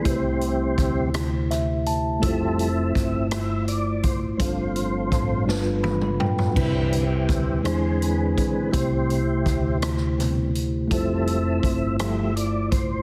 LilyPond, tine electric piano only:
<<
  \new Staff \with { instrumentName = "Tine electric piano" } { \time 6/8 \key a \minor \tempo 4. = 55 << { r2 e''8 a''8 | r2. | r2 b''8 g''8 | r2. |
r2. | r2. | } \\ { <a e' g' b' c''>2. | <a e' f' c''>2. | <g d' f' c''>4. <g d' f' b'>4. | <g c' e' b'>4. <gis d' e' c''>4. |
<a e' g' c''>2. | <a e' f' c''>2. | } >> }
  \new Staff \with { instrumentName = "Tine electric piano" } { \clef bass \time 6/8 \key a \minor c4. r4. | r2. | g,4. g,4. | c4. e4. |
c4. r4. | r2. | }
>>